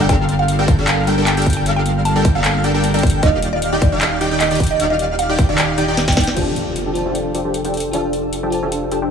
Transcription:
Already playing: sub bass G1, ambient pad G3 A#3 F4
0.00 supersaw synth G3 D4 A4 A#4 G5, digital synth lead G5
0.09 supersaw synth G3 D4 A4 A#4 F5, digital synth lead F5, synth pluck G5, kick, closed hi-hat
0.29 closed hi-hat
0.39 synth pluck F5
0.48 closed hi-hat
0.59 supersaw synth G3 D4 A4 A#4 G5, digital synth lead G5
0.68 synth pluck F5, kick, closed hi-hat
0.79 supersaw synth G3 D4 A4 A#4 F5, digital synth lead F5
0.88 clap, closed hi-hat
1.07 supersaw synth G3 D4 A4 A#4 G5, digital synth lead G5, closed hi-hat
1.18 supersaw synth G3 D4 A4 A#4 G5, digital synth lead G5
1.27 synth pluck G5, clap, closed hi-hat
1.37 supersaw synth G3 D4 A4 A#4 G5, digital synth lead G5, closed hi-hat
1.42 closed hi-hat
1.46 kick, closed hi-hat
1.50 closed hi-hat
1.53 synth pluck G5, closed hi-hat
1.66 supersaw synth G3 D4 A4 A#4 F5, digital synth lead F5, closed hi-hat
1.76 synth pluck G5
1.86 closed hi-hat
2.05 synth pluck A5, closed hi-hat
2.16 supersaw synth G3 D4 A4 A#4 G5, digital synth lead G5
2.25 kick, closed hi-hat
2.35 supersaw synth G3 D4 A4 A#4 F5, synth pluck F5, digital synth lead F5
2.44 clap, closed hi-hat
2.64 supersaw synth G3 D4 A4 A#4 G5, digital synth lead G5, closed hi-hat
2.74 supersaw synth G3 D4 A4 A#4 G5, digital synth lead G5
2.84 closed hi-hat
2.94 supersaw synth G3 D4 A4 A#4 G5, synth pluck D5, digital synth lead G5, closed hi-hat
2.99 closed hi-hat
3.03 kick, closed hi-hat
3.07 closed hi-hat
3.10 closed hi-hat
3.23 sub bass D#1, supersaw synth D#3 D#4 G4 D5 F5, ambient pad D#3 G4 D5, synth pluck D#5, digital synth lead F5, kick, closed hi-hat
3.42 closed hi-hat
3.53 synth pluck D5
3.62 closed hi-hat
3.73 supersaw synth D#3 D#4 G4 D5 G5, digital synth lead G5
3.82 synth pluck D5, kick, closed hi-hat
3.92 supersaw synth D#3 D#4 G4 D5 F5, digital synth lead F5
4.01 clap, closed hi-hat
4.21 supersaw synth D#3 D#4 G4 D5 G5, digital synth lead G5, closed hi-hat
4.31 supersaw synth D#3 D#4 G4 D5 G5, digital synth lead G5
4.40 synth pluck D#5, clap, closed hi-hat
4.51 supersaw synth D#3 D#4 G4 D5 G5, digital synth lead G5, closed hi-hat
4.55 closed hi-hat
4.60 kick, closed hi-hat
4.63 closed hi-hat
4.67 closed hi-hat
4.71 synth pluck D#5
4.80 supersaw synth D#3 D#4 G4 D5 F5, digital synth lead F5, closed hi-hat
4.90 synth pluck D#5
4.99 closed hi-hat
5.19 synth pluck F5, closed hi-hat
5.29 supersaw synth D#3 D#4 G4 D5 G5, digital synth lead G5
5.39 kick, closed hi-hat
5.49 supersaw synth D#3 D#4 G4 D5 F5, synth pluck D5, digital synth lead F5
5.58 clap, closed hi-hat
5.78 supersaw synth D#3 D#4 G4 D5 G5, digital synth lead G5, closed hi-hat
5.88 supersaw synth D#3 D#4 G4 D5 G5, digital synth lead G5
5.97 snare, closed hi-hat
6.08 supersaw synth D#3 D#4 G4 D5 G5, digital synth lead G5, synth pluck G5, kick, snare, closed hi-hat
6.12 closed hi-hat
6.17 kick, snare, closed hi-hat
6.20 closed hi-hat
6.24 snare, closed hi-hat
6.35 sub bass F1, ambient pad F3 D4 A4, supersaw synth F3 D4 G4 A4 F5, synth keys F4 C5 D5, closed hi-hat, crash, impact
6.39 synth keys A5
6.56 closed hi-hat
6.76 closed hi-hat
6.86 supersaw synth F3 D4 G4 A4 G5
6.93 synth keys F4 C5 D5 A5, closed hi-hat
7.06 supersaw synth F3 D4 G4 A4 F5
7.15 closed hi-hat
7.35 supersaw synth F3 D4 G4 A4 G5, closed hi-hat
7.45 supersaw synth F3 D4 G4 A4 G5
7.54 closed hi-hat
7.65 supersaw synth F3 D4 G4 A4 G5, closed hi-hat
7.74 closed hi-hat
7.77 closed hi-hat
7.80 closed hi-hat
7.91 supersaw synth F3 D4 G4 A4 F5, synth keys F4 C5 D5 A5, closed hi-hat
8.13 closed hi-hat
8.33 closed hi-hat
8.43 supersaw synth F3 D4 G4 A4 G5
8.50 synth keys F4 C5 D5 A5, closed hi-hat
8.63 supersaw synth F3 D4 G4 A4 F5
8.72 closed hi-hat
8.92 supersaw synth F3 D4 G4 A4 G5, closed hi-hat
9.02 supersaw synth F3 D4 G4 A4 G5

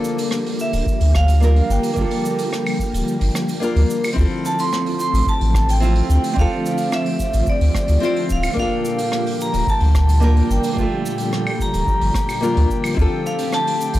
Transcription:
Already playing: string machine D3 F3 G3 A#3, nylon-string guitar A#3 D4 F4 A4
0.04 cabasa
0.18 open hi-hat, cabasa
0.31 cross-stick, cabasa
0.46 open hi-hat
0.60 vibraphone E5, cabasa
0.73 sub bass D1, open hi-hat, cabasa
0.87 kick, cabasa
1.01 sub bass D2, open hi-hat
1.14 vibraphone F5, kick, cross-stick, cabasa
1.28 open hi-hat, cabasa
1.40 nylon-string guitar A#3 D4 F4 A#4, cabasa
1.56 open hi-hat
1.70 sub bass G1, vibraphone G5, cabasa
1.83 open hi-hat, cabasa
1.94 sub bass G1, nylon-string guitar A#3 D4, kick, cabasa
1.98 nylon-string guitar F4 A4
2.11 open hi-hat
2.25 cabasa
2.38 open hi-hat, cabasa
2.53 cross-stick, cabasa
2.66 open hi-hat, claves
2.79 kick, cabasa
2.94 sub bass D1, open hi-hat, cabasa
3.08 cabasa
3.21 sub bass G1, open hi-hat
3.35 cross-stick, cabasa
3.49 open hi-hat, cabasa
3.60 nylon-string guitar A#3 D4 F4 A#4, cabasa
3.76 sub bass D2, open hi-hat
3.90 cabasa
4.04 open hi-hat, cabasa, claves
4.13 string machine D3 A3 C4, nylon-string guitar C4 E4, kick
4.17 sub bass D2, nylon-string guitar F4 A4, synth texture G4 G5, cabasa
4.45 vibraphone A5, cabasa
4.59 vibraphone C6, open hi-hat, cabasa
4.73 cross-stick, cabasa
4.86 open hi-hat
5.00 vibraphone C6, cabasa
5.13 sub bass A1, open hi-hat, cabasa
5.27 vibraphone A5, kick, cabasa
5.41 sub bass A1, open hi-hat
5.54 kick, cross-stick, cabasa
5.69 vibraphone G5, open hi-hat, cabasa
5.80 nylon-string guitar C4 E4 F4 C5, cabasa
5.95 open hi-hat
6.09 sub bass D2, vibraphone G5, cabasa
6.24 open hi-hat, cabasa
6.31 nylon-string guitar C4, vibraphone G5
6.36 sub bass D2, nylon-string guitar D4 F4, vibraphone F5, kick, cabasa
6.41 nylon-string guitar A4
6.66 cabasa
6.77 open hi-hat, cabasa
6.92 vibraphone E5, cross-stick, cabasa
7.06 open hi-hat
7.20 kick, cabasa
7.33 sub bass A1, open hi-hat, cabasa
7.47 vibraphone D5, kick, cabasa
7.61 sub bass D2, open hi-hat
7.75 kick, cross-stick, cabasa
7.88 sub bass D2, open hi-hat, cabasa
8.00 nylon-string guitar C4 E4 F4 C5, cabasa
8.05 vibraphone D5
8.16 open hi-hat
8.30 sub bass D1, vibraphone F5, kick, cabasa
8.43 open hi-hat, cabasa, claves
8.54 sub bass G1, string machine A#2 G3, nylon-string guitar A#3 D4, kick
8.58 nylon-string guitar F4 A4, vibraphone F5, cabasa
8.85 cabasa
8.98 open hi-hat, cabasa
9.12 cross-stick, cabasa
9.27 open hi-hat
9.41 vibraphone A#5, cabasa
9.54 sub bass D1, open hi-hat, cabasa
9.67 vibraphone A5, kick, cabasa
9.80 sub bass D2, open hi-hat
9.95 kick, cross-stick, cabasa
10.09 open hi-hat, cabasa
10.20 nylon-string guitar A#3 D4 F4 A#4, cabasa
10.37 open hi-hat
10.50 sub bass G1, vibraphone G5, cabasa
10.64 open hi-hat, cabasa
10.73 nylon-string guitar A#3 D4
10.77 sub bass G1, nylon-string guitar A3 F4, kick, cabasa
11.06 cabasa
11.18 open hi-hat, cabasa
11.33 cross-stick, cabasa
11.47 open hi-hat, claves
11.60 vibraphone A#5, kick, cabasa
11.74 sub bass D1, open hi-hat, cabasa
11.87 kick, cabasa
12.01 sub bass G1, open hi-hat
12.14 kick, cross-stick, cabasa
12.29 open hi-hat, cabasa, claves
12.41 nylon-string guitar A#3 D4 F4 A#4, cabasa
12.57 sub bass D2, open hi-hat
12.70 kick, cabasa
12.84 open hi-hat, cabasa, claves
12.94 sub bass D2, string machine F3 A3 C4, nylon-string guitar C4 E4, kick
12.99 nylon-string guitar F4 A4, cabasa
13.26 vibraphone F5, cabasa
13.38 open hi-hat, cabasa
13.52 vibraphone A5, cross-stick, cabasa
13.67 open hi-hat
13.81 cabasa
13.93 sub bass A1, open hi-hat, cabasa

